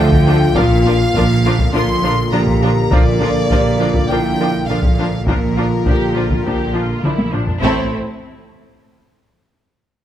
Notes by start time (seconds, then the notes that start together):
Already playing: D2 D3 F3 A3 F4
0.00 G5
0.12 taiko
0.27 F3 D4 F4 A4
0.56 A#1 A#2 D3 F3 A#3 D4 F4 A#4 F5, taiko
0.86 F3 D4 F4 A#4
1.14 A#1 A#2 F3 D4 F4 A#4, taiko
1.46 F3 D4 F4 A#4
1.59 taiko
1.73 A#1 A#2 F3 D4 F4 A#4 C6
2.03 F3 D4 F4 A#4
2.32 A#1 A#2 F3 D4 F4 G4 A#4 A#5
2.47 taiko
2.62 F3 D4 F4 A#4
2.91 A#1 A#2 F3 D4 F4 A#4 D5, taiko
3.21 F3 D4 F4 A4 A#4
3.50 A#1 A#2 F3 D4 F4 G4 A#4, taiko
3.80 F3 D4 F4 A#4
3.94 taiko
4.09 A#1 A#2 F3 D4 E4 F4 A#4 G5
4.40 F3 D4 F4 A#4
4.68 A#1 A#2 F3 D4 F4 A#4 F5
4.83 taiko
4.99 F3 D4 F4 A#4
5.27 A#1 A#2 D3 F3 A#3 D4 F4 A#4, taiko
5.57 F3 D4 F4 A#4
5.86 A#1 A#2 F3 D4 G4, taiko
6.16 F3 D4 F4
6.30 taiko
6.45 A#1 A#2 F3 D4 G4
6.75 F3 D4 F4
7.03 A#1 A#2 F3 D4 E4, taiko mid
7.18 taiko high
7.32 F3 D4, taiko low-mid
7.47 taiko low
7.61 A1 A2 A3 C4 E4 A4, taiko